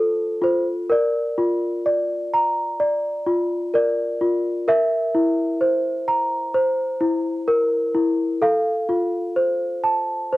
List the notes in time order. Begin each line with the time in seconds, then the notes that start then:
Already playing: F4 A4 C5 A5
0.42 F4 C5
0.90 A#4 D5
1.38 F4
1.86 D5
2.34 A#5
2.80 D5
3.26 F4
3.74 A#4 D5
4.21 F4
4.68 A#4 E5
5.15 E4
5.61 C5
6.08 A#5
6.54 C5
7.01 E4
7.48 A#4
7.95 E4
8.42 A4 F5
8.89 F4
9.36 C5
9.84 A5
10.33 C5